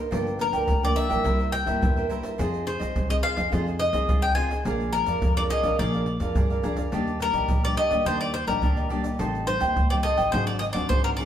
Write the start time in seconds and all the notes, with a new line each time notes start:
Already playing: A#4 C5
0.11 G1 G2 F3 A#3 D4 F4 A#4 D5 G5, pandeiro, shaker, surdo
0.27 pandeiro, shaker
0.39 F3 A#3 D4 A#4, muted cavaquinho stroke, pandeiro, shaker
0.52 D2 A#4 D5 G5, pandeiro, shaker, surdo
0.68 D2 D3, pandeiro, shaker, surdo
0.83 F3 A#3 D4 A#4 D5 G5, pandeiro, shaker
0.96 F4 A#4 D5 E5 G5, pandeiro, shaker, surdo
1.09 A#1 G3 A#3 E4 A#4 D5 G5, pandeiro, shaker
1.24 C2 C3 E4 A#4 C5 E5, pandeiro, shaker, surdo
1.39 A#4 C5 E5, pandeiro, shaker
1.52 G5, muted cavaquinho stroke, pandeiro, shaker
1.65 G2 G3 A#3 E4 A#4 C5 E5, pandeiro, shaker, surdo
1.81 E2 G2 E4 A#4 C5 E5, pandeiro, shaker, surdo
1.96 A#4 C5 E5, pandeiro, shaker
2.09 G3 A#3 E4 A#4 C5 E5, pandeiro, shaker
2.23 A#4 C5 E5, pandeiro, shaker, surdo
2.38 F2 F3 C4 D#4 F4 G#4 C5 D#5, pandeiro, shaker, surdo
2.54 pandeiro, shaker
2.66 C4 D#4 G#4 C5, muted cavaquinho stroke, pandeiro, shaker
2.80 C2 G#4 C5 D#5, pandeiro, shaker, surdo
2.96 C2 C3, pandeiro, shaker, surdo
3.09 C4 D#4 G#4 C5 D#5, pandeiro, shaker
3.23 F4 G#4 C5 D#5 F5, pandeiro, shaker, surdo
3.37 F2 G#4 C5 D#5, pandeiro, shaker
3.52 F2 F3 C4 D#4 F4 G#4 C5 D#5, pandeiro, shaker, surdo
3.66 G#4 C5 D#5, pandeiro, shaker
3.79 D#5, muted cavaquinho stroke, pandeiro, shaker
3.93 C2 C4 D#4 G#4 C5 D#5, pandeiro, shaker, surdo
4.08 C2 C3 F4 G#4 C5 D#5, pandeiro, shaker, surdo
4.22 G#4 C5 D#5 G5, pandeiro, shaker
4.35 C4 D#4 F4 G#4 C5 D#5 G#5, pandeiro, shaker, surdo
4.51 G#4 C5 D#5, pandeiro, shaker, surdo
4.64 A#1 A#2 F3 G#3 D4 G#4 A#4 D5 F5, pandeiro, shaker, surdo
4.80 pandeiro, shaker
4.93 F3 G#3 D4 A#4, muted cavaquinho stroke, pandeiro
5.06 F2 A#4 D5 F5, pandeiro, shaker, surdo
5.22 F2, pandeiro, shaker, surdo
5.36 F3 G#3 D4 A#4 D5 F5, pandeiro, shaker
5.50 G#4 A#4 D5 D#5 F5, pandeiro, shaker, surdo
5.63 A#1 F3 G#3 D4 A#4 D5 F5, pandeiro, shaker
5.79 A#1 A#2 F3 G#3 D4 G#4 A#4 D5 F5, pandeiro, shaker, surdo
5.93 A#4 D5 F5, pandeiro, shaker
6.06 muted cavaquinho stroke, pandeiro
6.20 F2 F3 G#3 D4 A#4 D5 F5, pandeiro, shaker, surdo
6.35 F2 G2 G#4 A#4 D5 F5, pandeiro, shaker, surdo
6.50 A#4 D5 F5, pandeiro, shaker
6.63 F2 F3 G#3 D4 G#4 A#4 D5 F5, pandeiro, shaker, surdo
6.77 A#4 D5 F5, pandeiro, shaker, surdo
6.92 D#2 D#3 G3 A#3 D4 G4 D5 D#5, pandeiro, shaker, surdo
7.07 pandeiro, shaker
7.20 G3 A#3 D4 A#4, muted cavaquinho stroke, pandeiro, shaker
7.33 A#1 G4 D5 D#5, pandeiro, shaker, surdo
7.48 A#1 A#2, pandeiro, shaker, surdo
7.64 G3 A#3 D4 G4 D5 D#5, pandeiro, shaker
7.77 D4 G4 D5 D#5, pandeiro, shaker, surdo
7.91 D#2 G3 A#3 D4 G4 D5 D#5, pandeiro, shaker
8.05 D#2 D#3 G3 A#3 D4 G4 C5 D5 D#5, pandeiro, shaker, surdo
8.21 G4 D5 D#5, pandeiro, shaker
8.34 C5, muted cavaquinho stroke, pandeiro
8.47 A#1 G3 A#3 D4 G4 A#4 D5 D#5, pandeiro, shaker, surdo
8.62 D#2 A#2 D4 G4 D5 D#5, pandeiro, shaker, surdo
8.76 G4 D5 D#5, pandeiro, shaker
8.89 G3 A#3 D4 G4 D5 D#5, pandeiro
9.03 G4 D5 D#5, pandeiro, shaker, surdo
9.19 A1 A2 G3 C4 D#4 A4 C5 D#5 G5, pandeiro, shaker, surdo
9.35 pandeiro, shaker
9.47 G3 C4 D#4 C5, muted cavaquinho stroke, pandeiro, shaker
9.60 D#2 C5 D#5 G5, pandeiro, shaker, surdo
9.76 D#2 A2, pandeiro, shaker, surdo
9.90 G3 C4 D#4 C5 D5 D#5 G5, pandeiro, shaker
10.03 A4 C5 D#5 G5, pandeiro, shaker, surdo
10.17 A1 C5 D#5 G5, pandeiro, shaker
10.32 G#1 G#2 F#3 C4 D4 D#4 G#4 C5 F#5, pandeiro, shaker, surdo
10.47 G#4 C5 D5 F#5, pandeiro, shaker
10.59 D#5, muted cavaquinho stroke, pandeiro, shaker
10.73 D#2 F#3 C4 D4 G#4 C5 D5 F#5, pandeiro, shaker, surdo
10.89 G#1 D#3 D#4 G#4 C5 F#5, pandeiro, shaker, surdo
11.04 G#4 A#4 C5 F#5, pandeiro, shaker
11.17 F#3 C4 D4 D#4 G#4 C5 D5 F#5, pandeiro, shaker